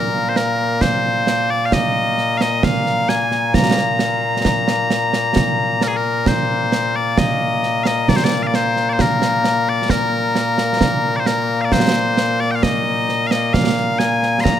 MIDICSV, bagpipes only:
0, 0, Header, 1, 2, 480
1, 0, Start_track
1, 0, Tempo, 909091
1, 430, Time_signature, 3, 2, 24, 8
1, 7707, End_track
2, 0, Start_track
2, 0, Title_t, "Bagpipes"
2, 0, Program_c, 0, 109
2, 0, Note_on_c, 0, 46, 89
2, 0, Note_on_c, 0, 58, 89
2, 0, Note_on_c, 0, 70, 87
2, 154, Note_off_c, 0, 70, 0
2, 154, Note_on_c, 0, 72, 71
2, 194, Note_off_c, 0, 72, 0
2, 194, Note_on_c, 0, 70, 83
2, 430, Note_off_c, 0, 70, 0
2, 430, Note_on_c, 0, 72, 86
2, 793, Note_off_c, 0, 72, 0
2, 793, Note_on_c, 0, 74, 93
2, 874, Note_off_c, 0, 74, 0
2, 874, Note_on_c, 0, 77, 73
2, 914, Note_off_c, 0, 77, 0
2, 914, Note_on_c, 0, 75, 98
2, 1253, Note_off_c, 0, 75, 0
2, 1253, Note_on_c, 0, 77, 91
2, 1274, Note_off_c, 0, 77, 0
2, 1274, Note_on_c, 0, 75, 91
2, 1394, Note_off_c, 0, 75, 0
2, 1394, Note_on_c, 0, 77, 91
2, 1632, Note_off_c, 0, 77, 0
2, 1632, Note_on_c, 0, 80, 96
2, 1870, Note_off_c, 0, 80, 0
2, 1870, Note_on_c, 0, 82, 88
2, 3080, Note_off_c, 0, 82, 0
2, 3080, Note_on_c, 0, 70, 80
2, 3104, Note_off_c, 0, 70, 0
2, 3104, Note_on_c, 0, 68, 68
2, 3150, Note_off_c, 0, 68, 0
2, 3150, Note_on_c, 0, 70, 72
2, 3315, Note_off_c, 0, 70, 0
2, 3315, Note_on_c, 0, 72, 75
2, 3673, Note_off_c, 0, 72, 0
2, 3673, Note_on_c, 0, 74, 83
2, 3794, Note_off_c, 0, 74, 0
2, 3794, Note_on_c, 0, 75, 84
2, 4136, Note_off_c, 0, 75, 0
2, 4136, Note_on_c, 0, 77, 82
2, 4154, Note_off_c, 0, 77, 0
2, 4154, Note_on_c, 0, 75, 82
2, 4271, Note_off_c, 0, 75, 0
2, 4271, Note_on_c, 0, 74, 81
2, 4309, Note_off_c, 0, 74, 0
2, 4309, Note_on_c, 0, 72, 71
2, 4351, Note_off_c, 0, 72, 0
2, 4351, Note_on_c, 0, 74, 80
2, 4449, Note_off_c, 0, 74, 0
2, 4449, Note_on_c, 0, 77, 64
2, 4471, Note_off_c, 0, 77, 0
2, 4471, Note_on_c, 0, 74, 64
2, 4515, Note_off_c, 0, 74, 0
2, 4515, Note_on_c, 0, 72, 89
2, 4695, Note_off_c, 0, 72, 0
2, 4695, Note_on_c, 0, 74, 69
2, 4714, Note_off_c, 0, 74, 0
2, 4714, Note_on_c, 0, 72, 69
2, 4759, Note_off_c, 0, 72, 0
2, 4759, Note_on_c, 0, 70, 83
2, 5117, Note_off_c, 0, 70, 0
2, 5117, Note_on_c, 0, 74, 91
2, 5229, Note_off_c, 0, 74, 0
2, 5229, Note_on_c, 0, 70, 88
2, 5894, Note_off_c, 0, 70, 0
2, 5894, Note_on_c, 0, 74, 72
2, 5911, Note_on_c, 0, 72, 72
2, 5912, Note_off_c, 0, 74, 0
2, 5949, Note_off_c, 0, 72, 0
2, 5949, Note_on_c, 0, 70, 89
2, 6131, Note_off_c, 0, 70, 0
2, 6131, Note_on_c, 0, 77, 65
2, 6150, Note_off_c, 0, 77, 0
2, 6150, Note_on_c, 0, 74, 65
2, 6190, Note_off_c, 0, 74, 0
2, 6190, Note_on_c, 0, 72, 91
2, 6548, Note_off_c, 0, 72, 0
2, 6548, Note_on_c, 0, 74, 95
2, 6606, Note_off_c, 0, 74, 0
2, 6606, Note_on_c, 0, 79, 81
2, 6629, Note_off_c, 0, 79, 0
2, 6629, Note_on_c, 0, 77, 81
2, 6668, Note_off_c, 0, 77, 0
2, 6668, Note_on_c, 0, 75, 101
2, 7006, Note_off_c, 0, 75, 0
2, 7006, Note_on_c, 0, 77, 96
2, 7029, Note_off_c, 0, 77, 0
2, 7029, Note_on_c, 0, 75, 96
2, 7145, Note_off_c, 0, 75, 0
2, 7145, Note_on_c, 0, 77, 87
2, 7386, Note_off_c, 0, 77, 0
2, 7386, Note_on_c, 0, 80, 103
2, 7607, Note_off_c, 0, 80, 0
2, 7607, Note_on_c, 0, 84, 96
2, 7624, Note_off_c, 0, 84, 0
2, 7624, Note_on_c, 0, 82, 96
2, 7707, Note_off_c, 0, 46, 0
2, 7707, Note_off_c, 0, 58, 0
2, 7707, Note_off_c, 0, 82, 0
2, 7707, End_track
0, 0, End_of_file